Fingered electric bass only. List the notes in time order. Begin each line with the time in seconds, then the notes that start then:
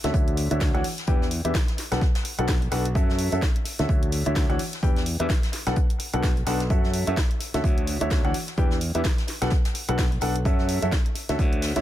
0.04 D2
0.14 D2
0.51 D2
0.75 D2
1.08 E2
1.45 E2
1.92 B1
2.39 B1
2.72 B1
2.95 F#2
3.32 F#2
3.79 D2
3.89 D2
4.26 D2
4.50 D2
4.83 E2
5.20 E2
5.67 B1
6.14 B1
6.47 B1
6.70 F#2
7.07 F#2
7.54 D2
7.64 D2
8.01 D2
8.25 D2
8.58 E2
8.95 E2
9.42 B1
9.89 B1
10.22 B1
10.45 F#2
10.82 F#2
11.29 D2
11.39 D2
11.76 D2